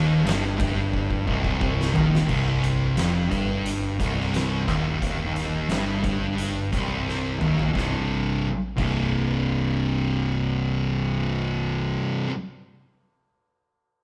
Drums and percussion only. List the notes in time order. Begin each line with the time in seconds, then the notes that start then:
0.27 snare, ride
0.60 kick, snare, ride
0.94 kick
1.11 kick
1.28 kick
1.44 kick
1.61 kick
1.81 snare
1.96 floor tom
2.15 snare
2.29 kick, crash
2.64 closed hi-hat
2.97 snare, closed hi-hat
3.31 kick, closed hi-hat
3.66 closed hi-hat
4.00 kick, closed hi-hat
4.20 snare
4.34 snare, closed hi-hat
4.68 kick, closed hi-hat
5.02 kick, closed hi-hat
5.36 closed hi-hat
5.69 snare, closed hi-hat
6.04 kick, closed hi-hat
6.38 closed hi-hat
6.73 kick, closed hi-hat
7.09 snare
7.41 mid tom
7.59 floor tom
7.75 kick, snare
8.78 kick, crash